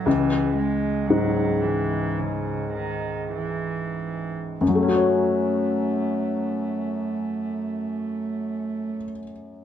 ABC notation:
X:1
M:4/4
L:1/8
Q:1/4=47
K:F#m
V:1 name="Felt piano" clef=bass
C,,2 G,,6 | [F,,F,A,CFc]8 |]
V:2 name="Cello" clef=bass
E, G, F, E, C, ^D, E,2 | A,8 |]